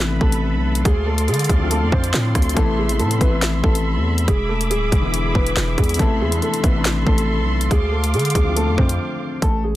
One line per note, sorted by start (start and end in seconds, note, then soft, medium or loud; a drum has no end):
0.00 0.19 A1 loud
0.00 0.87 C3 medium
0.00 0.87 E3 medium
0.00 0.87 A3 medium
0.00 0.87 B3 medium
0.00 0.86 D4 medium
0.00 0.87 E4 loud
0.00 4.24 A4 medium
0.00 0.83 B4 medium
0.00 0.81 E5 medium
0.00 0.81 B5 medium
0.00 snare loud
0.00 clap loud
0.00 closed hi-hat medium
0.21 0.55 A1 loud
0.21 0.82 A3 medium
0.21 0.81 A4 medium
0.21 kick loud
0.32 closed hi-hat medium
0.54 0.84 B1 loud
0.75 closed hi-hat medium
0.85 1.30 D2 loud
0.85 1.06 G#3 medium
0.85 1.05 G#4 loud
0.85 2.55 D5 medium
0.85 2.55 F5 medium
0.85 4.25 C6 medium
0.85 kick loud
0.85 closed hi-hat medium
1.06 1.27 A3 medium
1.06 1.26 A4 medium
1.18 closed hi-hat medium
1.28 1.48 D3 loud
1.28 1.48 G#3 medium
1.28 1.48 G#4 medium
1.28 closed hi-hat soft
1.34 closed hi-hat medium
1.39 closed hi-hat medium
1.44 closed hi-hat medium
1.49 1.84 D2 loud
1.49 1.70 G#3 medium
1.49 1.69 G#4 medium
1.49 kick loud
1.49 closed hi-hat medium
1.58 2.13 D3 medium
1.58 2.14 F3 medium
1.58 2.15 A3 medium
1.58 2.15 C4 medium
1.63 2.16 F4 medium
1.70 1.91 A3 medium
1.70 1.90 A4 medium
1.70 closed hi-hat medium
1.82 1.92 F2 loud
1.92 2.13 F2 loud
1.92 2.53 C4 medium
1.92 2.53 C5 medium
1.92 kick medium
2.04 closed hi-hat medium
2.14 2.34 A2 loud
2.14 snare loud
2.14 clap loud
2.35 2.56 D2 loud
2.35 kick loud
2.35 cross-stick loud
2.35 closed hi-hat medium
2.42 closed hi-hat medium
2.49 closed hi-hat medium
2.54 3.01 A1 loud
2.54 2.76 C3 loud
2.54 2.77 E3 medium
2.54 2.77 A3 medium
2.54 2.78 B3 medium
2.54 2.76 A4 loud
2.54 7.67 E5 medium
2.54 7.67 B5 medium
2.54 kick loud
2.54 closed hi-hat medium
2.59 2.78 E4 loud
2.78 2.98 G#3 medium
2.78 2.98 G#4 medium
2.87 3.09 C3 medium
2.87 3.09 E3 medium
2.87 3.10 A3 medium
2.87 3.11 B3 medium
2.87 closed hi-hat medium
2.92 3.11 E4 medium
2.99 3.20 A2 loud
2.99 3.20 A3 medium
2.99 3.19 A4 medium
2.99 closed hi-hat soft
3.11 closed hi-hat medium
3.18 3.62 A1 loud
3.18 3.27 C3 medium
3.18 3.27 E3 medium
3.18 3.28 A3 medium
3.18 3.41 B3 medium
3.18 3.29 B3 medium
3.18 3.41 B4 medium
3.18 kick loud
3.18 closed hi-hat medium
3.23 3.29 E4 medium
3.29 3.85 C3 medium
3.29 3.85 E3 medium
3.29 3.86 A3 medium
3.29 3.87 B3 medium
3.34 3.87 E4 medium
3.42 snare loud
3.42 clap loud
3.42 closed hi-hat medium
3.64 3.98 A1 loud
3.64 4.25 A3 medium
3.64 4.24 A4 medium
3.64 kick loud
3.75 closed hi-hat medium
3.96 4.26 E2 loud
4.18 closed hi-hat medium
4.28 4.72 E1 loud
4.28 4.48 G#3 medium
4.28 5.98 G#4 medium
4.28 4.48 G#4 medium
4.28 5.98 D6 medium
4.28 kick loud
4.28 closed hi-hat medium
4.49 4.69 A3 medium
4.49 4.69 A4 medium
4.61 closed hi-hat medium
4.70 4.91 D1 loud
4.70 4.91 G#3 medium
4.70 4.90 G#4 loud
4.70 closed hi-hat medium
4.92 5.33 E1 loud
4.92 5.12 G#3 medium
4.92 5.12 G#4 medium
4.92 kick loud
4.92 closed hi-hat medium
5.01 5.56 D3 medium
5.01 5.57 E3 medium
5.01 5.57 G#3 medium
5.01 5.58 B3 medium
5.06 5.59 E4 medium
5.14 closed hi-hat medium
5.35 5.56 E1 loud
5.35 5.76 B3 medium
5.35 5.76 B4 medium
5.35 kick loud
5.47 closed hi-hat medium
5.57 5.77 E1 loud
5.57 snare loud
5.57 clap loud
5.78 5.99 E2 loud
5.78 5.98 G#3 medium
5.78 5.98 G#4 medium
5.78 kick loud
5.78 closed hi-hat medium
5.84 closed hi-hat medium
5.89 closed hi-hat medium
5.94 6.19 C3 loud
5.94 6.19 E3 medium
5.94 closed hi-hat medium
5.99 6.22 A1 loud
5.99 6.20 A3 medium
5.99 6.20 B3 loud
5.99 6.21 E4 loud
5.99 6.19 A4 loud
5.99 9.39 A4 medium
5.99 9.39 C6 medium
5.99 kick loud
5.99 closed hi-hat medium
6.21 6.41 E2 loud
6.21 6.41 G#3 medium
6.21 6.41 G#4 medium
6.30 6.51 C3 medium
6.30 6.52 E3 medium
6.30 6.53 A3 medium
6.30 6.53 B3 medium
6.30 closed hi-hat medium
6.35 6.54 D4 medium
6.42 6.62 A3 medium
6.42 6.62 A4 medium
6.42 closed hi-hat soft
6.54 closed hi-hat medium
6.60 7.05 A1 loud
6.60 6.69 C3 medium
6.60 6.70 E3 medium
6.60 6.71 A3 medium
6.60 6.71 B3 medium
6.60 6.84 B4 medium
6.60 kick loud
6.60 closed hi-hat medium
6.65 6.84 B3 medium
6.65 6.72 E4 medium
6.73 7.28 C3 medium
6.73 7.28 E3 medium
6.73 7.29 A3 medium
6.73 7.30 B3 medium
6.78 7.30 D4 medium
6.85 snare loud
6.85 clap loud
6.85 closed hi-hat medium
7.07 7.41 A1 loud
7.07 7.67 A3 medium
7.07 7.67 A4 medium
7.07 kick loud
7.18 closed hi-hat medium
7.39 7.69 B1 loud
7.61 closed hi-hat medium
7.71 8.15 D2 loud
7.71 7.91 G#3 medium
7.71 7.91 G#4 loud
7.71 9.41 F5 medium
7.71 9.41 D6 medium
7.71 kick loud
7.71 closed hi-hat medium
7.92 8.12 A3 medium
7.92 8.12 A4 medium
8.04 closed hi-hat medium
8.14 8.34 D3 loud
8.14 8.34 G#3 medium
8.14 8.34 G#4 medium
8.14 closed hi-hat soft
8.19 closed hi-hat medium
8.25 closed hi-hat medium
8.30 closed hi-hat medium
8.35 8.69 D2 loud
8.35 8.55 G#3 medium
8.35 8.55 G#4 medium
8.35 kick loud
8.35 closed hi-hat medium
8.44 8.99 D3 medium
8.44 9.00 F3 medium
8.44 9.00 A3 medium
8.44 9.01 C4 medium
8.49 9.02 F4 medium
8.56 8.76 A3 medium
8.56 8.76 A4 medium
8.56 closed hi-hat medium
8.68 8.77 F2 loud
8.78 8.99 F2 loud
8.78 9.39 C4 medium
8.78 9.38 C5 medium
8.78 kick medium
8.89 closed hi-hat medium
9.42 9.76 A1 loud
9.42 9.62 A3 medium
9.42 9.62 A4 loud
9.42 kick loud
9.42 closed hi-hat medium
9.63 9.76 G#3 medium
9.63 9.76 G#4 medium